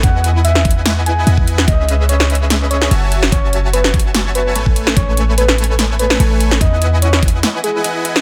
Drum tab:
HH |x---x---x---xx--x---x---x---x---|x---x---x---xx--x---x---x---x---|x---x---x---xx--x---x---x---x---|x---x---x---xx--x---x---x---x---|
SD |----------o-----o-------------o-|----------o-----o-----o-------o-|----------o-----o-------------o-|----------o-----o-----o-------o-|
BD |o-----------o-------------o-----|o-------------------------------|o-----------o-------------o-----|o-------------------------------|

HH |x---x---x---xx--x---x---x---x---|
SD |----------o-----o-------------o-|
BD |o-----------o-------------------|